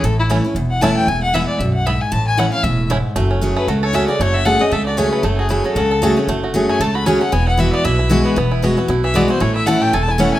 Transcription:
0.03 A1 A2 A4
0.19 E4
0.30 E3 A3 C#4 E4
0.44 C#4 E4
0.55 E1 E2
0.70 F#5
0.81 E3 A3 C#4 E4 A5
0.97 G5
1.07 E1 E2 G#5
1.23 F#5
1.33 E3 G#3 B3 E4 E5
1.47 D5
1.59 B1 F#2 E5
1.74 F#5
1.86 G#2 B3 E4 E5
2.01 G#5
2.11 A1 A2 A5
2.27 G#5
2.37 E3 A3 C#4 E4 F#5
2.52 C#4 E4 F5
2.63 E1 A2 E5
2.90 G#2 A3 C#4 E4
3.16 F#1 F#2 A3
3.31 C#4
3.41 F#3 A3 C#4 G#4
3.57 A3 B4
3.67 C#2 C#3 F#4 A4
3.83 A4 C#5
3.93 F#3 A3 C#4 G#4 E5
4.08 C#4 F#4 G#4 D5
4.20 F#1 F#2 A3 C#5
4.34 F#4 E5
4.45 F#3 A3 C#4 G#4 A4 F#5
4.59 A3 C#4 G#4 D#5
4.71 C#2 C#3 A4 E5
4.86 F#4 D5
4.97 F#3 A3 C#4 G#4 C#5
5.11 A3 B4
5.23 F#1 F#2 A3 A4
5.38 F#4 G#4
5.49 F#3 A3 C#4 E4 G#4
5.64 F#3 C#4 G#4 A4
5.75 C#2 C#3 F#4
5.91 A4
6.02 F#3 A3 C#4 F#4 G#4
6.17 A3 C#4 G#4
6.28 F#1 F#2 A3
6.44 F#4
6.54 F#3 A3 C#4 G#4
6.69 A3 G#5
6.80 C#2 C#3 A4 A5
6.95 F#4 B5
7.06 F#3 A3 C#4 G#4 G#5
7.20 A3 C#4 G#4 F#5
7.32 E1 E2 B3 G#5
7.47 E4 F#5
7.57 E3 G#3 B3 E4 F#4 E5
7.73 B3 D5
7.85 B1 B2 E4 E5
7.99 E4
8.09 E3 G#3 B3 E4 F#4
8.24 B3 B4
8.36 E1 E2 B3
8.51 E4
8.62 E3 G#3 B3 F#4
8.77 B3 E4 F#4
8.88 B1 B2 E4
9.04 E3 E5
9.14 E3 G#3 B3 F#4 D5
9.28 B3 E4 F#4 C5
9.40 A1 A2 A3 C#5
9.55 E4 E5
9.66 E3 A3 C#4 E4 A4 F#5
9.81 A3 G5
9.93 E1 E2 A4 G#5
10.02 A5
10.08 E4 G#5
10.18 E3 A3 C#4 E4 F#5
10.34 A3 G#5

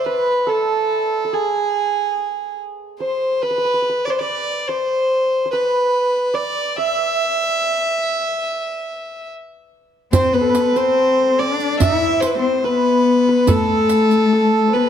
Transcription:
Already playing: C5 D5 E5
0.06 B4
0.47 A4
1.24 A4
1.33 G#4
2.99 C5
3.42 B4
3.50 B4
3.58 B4
3.65 B4
3.74 B4
3.82 B4
3.89 B4
4.05 D5
4.10 C5
4.18 D5
4.67 C5
5.45 C5
5.51 B4
6.34 D5
6.76 E5
10.12 C4 C5, riq, tombak dum
10.33 B3 B4
10.41 A4
10.49 B4
10.55 riq, tombak tek
10.75 C4 C5, riq
11.39 D4 D5, tombak ka
11.60 riq
11.80 E4 E5, riq, tombak dum
12.21 C5, riq
12.26 B4
12.35 C4 C5
12.64 B3 B4, tombak ka
13.27 B4, tombak ka
13.47 A3 A4, riq, tombak dum
13.89 riq
14.11 riq
14.33 A4
14.68 C5
14.73 B3 B4

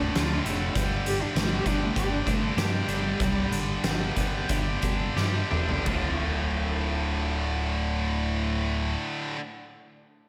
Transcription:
Already playing: D2 A2 D3 A3 D4 F4
0.15 D2 A2 D3 F4, snare, closed hi-hat
0.44 F1 D2 A2 D3 A3, closed hi-hat
0.74 G1 G2 D3 G3, kick, closed hi-hat
1.05 D3 G4, closed hi-hat
1.22 D4
1.34 G1 G2 D3 G3 A3, snare, closed hi-hat
1.52 G4
1.65 G1 G2 D3 G3 B3 D4, kick, closed hi-hat
1.82 A3
1.96 G1 G2 D3 G3 G4, kick, closed hi-hat
2.12 D4
2.27 G1 A3 D4, kick, closed hi-hat
2.57 G2 D3 G3 G4, snare, closed hi-hat
2.88 G1 G2 D3 G3 D4, closed hi-hat
3.20 C2 G2 D3 G3, kick, closed hi-hat
3.51 G1 D3, closed hi-hat
3.83 G1 G2 D3 G3, snare, closed hi-hat
4.16 G1 G2 D3 G3 B3, kick, closed hi-hat
4.49 G1 G2 D3 G3 G4, kick, closed hi-hat
4.82 G1 D4, kick, closed hi-hat
5.16 G2 D3 G3 G4, snare
5.51 E1 G2 D3 G3 D4, mid tom
5.69 floor tom
5.84 D1 D2 A2 D3 A3 F4, kick, floor tom, crash
5.89 D3

